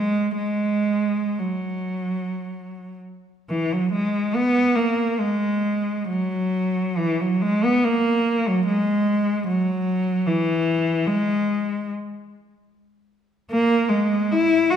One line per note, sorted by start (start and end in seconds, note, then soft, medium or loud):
0.00 0.36 G#3 medium
0.37 1.36 G#3 medium
1.39 2.96 F#3 soft
3.49 3.70 E3 medium
3.73 3.94 F#3 medium
3.93 4.35 G#3 medium
4.35 4.78 B3 medium
4.75 5.20 A#3 medium
5.20 6.10 G#3 medium
6.09 6.95 F#3 medium
6.98 7.19 E3 medium
7.20 7.41 F#3 medium
7.42 7.63 G#3 medium
7.64 7.84 B3 medium
7.84 8.45 A#3 medium
8.48 8.66 F#3 medium
8.67 9.44 G#3 medium
9.47 10.28 F#3 medium
10.27 11.07 E3 medium
11.07 11.89 G#3 medium
13.51 13.87 A#3 medium
13.89 14.28 G#3 medium
14.31 14.70 E4 medium
14.70 14.76 F#4 medium